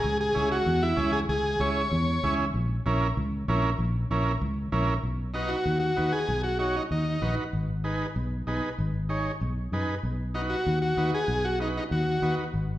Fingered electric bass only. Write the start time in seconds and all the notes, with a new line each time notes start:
0.04 C#2
0.36 C#2
0.66 E2
0.97 C#2
1.29 C#2
1.60 C#2
1.92 E2
2.23 C#2
2.54 A#1
2.86 A#1
3.17 C#2
3.48 A#1
3.79 A#1
4.11 A#1
4.41 C#2
4.72 A#1
5.03 B1
5.66 D#2
5.98 D#2
6.28 B1
6.91 D#2
7.22 A#1
7.53 G#1
8.16 B1
8.47 B1
8.78 G#1
9.41 B1
9.72 F#2
10.03 B1
10.66 D#2
10.97 D#2
11.28 B1
11.91 D#2
12.22 D#2
12.54 G#1